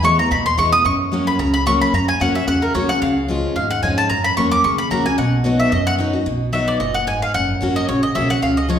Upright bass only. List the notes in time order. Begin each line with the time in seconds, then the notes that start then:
Already playing: E2
0.31 D#2
0.58 E2
0.85 F#2
1.39 C#2
1.93 F#2
2.21 F#2
2.47 E2
2.75 D#2
3.01 C#2
3.55 D#2
3.83 F2
4.10 F#2
4.37 E2
4.64 D#2
4.91 C#2
5.18 B1
5.72 F#2
6.26 B1
6.80 F#1
7.34 F#1
7.62 G#1
7.88 A#1
8.15 B1
8.42 C#2